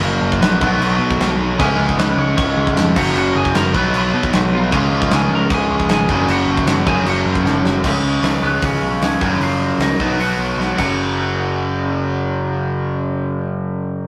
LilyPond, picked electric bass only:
\new Staff \with { instrumentName = "Picked electric bass" } { \clef bass \time 4/4 \key fis \major \tempo 4 = 153 fis,,8 fis,,8 ais,,8 b,,8 b,,8 b,8 b,,8 b,,8 | cis,8 cis,8 cis,8 cis,8 cis,8 cis,8 eis,8 fis,,8 | fis,,8 fis,,8 fis,,8 b,,8 b,,8 b,8 b,,8 b,,8 | cis,8 cis,8 cis,8 cis,8 cis,8 cis,8 gis,,8 fis,,8 |
fis,,8 fis,,8 fis,,8 fis,,8 fis,,8 fis,8 fis,,8 fis,,8 | cis,8 cis,8 cis,8 cis,8 cis,8 b,,8 cis,8 fis,,8 | fis,,4 cis,8 b,,8 b,,8 b,,8 b,,8 fis,,8~ | fis,,1~ |
fis,,1 | }